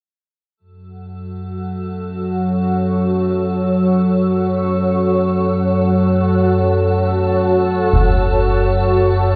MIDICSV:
0, 0, Header, 1, 5, 480
1, 0, Start_track
1, 0, Key_signature, 3, "minor"
1, 0, Tempo, 500000
1, 8984, End_track
2, 0, Start_track
2, 0, Title_t, "Ambient pad"
2, 0, Program_c, 0, 92
2, 561, Note_on_c, 0, 66, 71
2, 1556, Note_on_c, 0, 73, 73
2, 4249, Note_on_c, 0, 78, 66
2, 4793, Note_on_c, 0, 81, 66
2, 8984, Note_off_c, 0, 66, 0
2, 8984, Note_off_c, 0, 73, 0
2, 8984, Note_off_c, 0, 78, 0
2, 8984, Note_off_c, 0, 81, 0
2, 8984, End_track
3, 0, Start_track
3, 0, Title_t, "Ambient pad"
3, 0, Program_c, 1, 92
3, 549, Note_on_c, 1, 69, 76
3, 8984, Note_off_c, 1, 69, 0
3, 8984, End_track
4, 0, Start_track
4, 0, Title_t, "Synth drone"
4, 0, Program_c, 2, 95
4, 573, Note_on_c, 2, 54, 64
4, 582, Note_on_c, 2, 42, 65
4, 8984, Note_off_c, 2, 42, 0
4, 8984, Note_off_c, 2, 54, 0
4, 8984, End_track
5, 0, Start_track
5, 0, Title_t, "Drums"
5, 7612, Note_on_c, 9, 35, 58
5, 7708, Note_off_c, 9, 35, 0
5, 8984, End_track
0, 0, End_of_file